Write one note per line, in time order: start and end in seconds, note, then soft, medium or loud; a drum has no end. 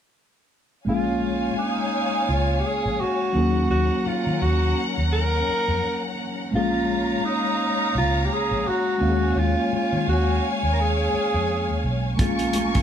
0.85 1.50 A#1 medium
0.85 3.30 G#3 soft
0.85 3.31 A#3 soft
0.85 3.31 C#4 soft
0.85 1.55 F4 medium
0.85 3.31 C#5 medium
0.85 3.31 F5 medium
0.85 3.32 F5 soft
0.85 3.31 G#5 medium
0.90 3.33 G#4 medium
1.59 2.31 D#4 medium
2.29 2.60 C#2 medium
2.29 2.61 F4 medium
2.60 2.67 G4 medium
2.65 3.02 G#4 medium
2.85 2.98 A#1 medium
3.01 3.70 F#4 medium
3.33 3.66 D#2 medium
3.33 6.13 F#3 medium
3.33 6.14 A#3 soft
3.33 6.14 C#4 soft
3.33 6.50 C#4 medium
3.33 6.15 D#4 soft
3.33 6.50 A#4 medium
3.33 6.50 F#5 medium
3.38 6.16 G#4 medium
3.70 3.89 D#2 medium
3.70 4.08 F#4 medium
4.06 4.43 F4 medium
4.06 muted fingered electric bass stroke soft
4.27 4.40 D#3 medium
4.41 4.73 D#2 medium
4.41 4.86 F#4 medium
4.98 5.42 D#2 medium
5.13 6.14 A#4 medium
5.48 muted fingered electric bass stroke soft
5.68 5.81 F2 medium
6.51 7.16 A#1 medium
6.51 8.96 G#3 medium
6.51 8.97 A#3 soft
6.51 8.97 C#4 soft
6.51 8.98 C#5 medium
6.51 8.97 F5 medium
6.51 8.98 A#5 medium
6.55 7.27 F4 medium
6.55 8.99 G#4 medium
6.55 8.98 F5 soft
7.25 7.95 D#4 medium
7.95 8.26 C#2 medium
7.95 8.26 F4 medium
8.25 8.34 G4 medium
8.32 8.69 G#4 medium
8.51 8.64 A#1 medium
8.68 9.39 F#4 medium
8.98 9.32 D#2 medium
8.98 11.78 G#3 medium
8.98 11.79 A#3 soft
8.98 11.79 C#4 soft
8.98 12.15 C#5 medium
8.98 12.15 F5 medium
8.98 12.15 G#5 medium
9.02 9.10 F#4 soft
9.02 11.80 F5 soft
9.10 11.84 G#4 medium
9.36 9.54 D#2 medium
9.36 9.72 F4 medium
9.72 10.06 F4 medium
9.72 muted fingered electric bass stroke soft
9.93 10.05 D#3 medium
10.08 10.39 D#2 medium
10.08 10.50 F#4 medium
10.63 11.07 D#2 medium
10.73 10.82 A#4 medium
10.80 11.85 G#4 medium
11.14 muted fingered electric bass stroke soft
11.34 11.69 F2 medium
11.69 11.82 D#2 medium
11.84 12.15 B1 medium
12.16 12.82 A#1 medium
12.16 12.82 G#3 medium
12.16 12.82 A#3 soft
12.16 12.26 C4 soft
12.16 12.82 A#4 medium
12.16 12.82 F5 soft
12.16 12.82 G#5 medium
12.16 12.82 C#6 medium
12.16 kick medium
12.16 closed hi-hat medium
12.16 muted conga soft
12.20 12.82 F4 medium
12.20 12.82 G#4 medium
12.26 12.82 C#4 soft
12.39 closed hi-hat soft
12.39 muted conga soft
12.53 closed hi-hat medium
12.53 high conga medium
12.75 kick medium
12.75 closed hi-hat soft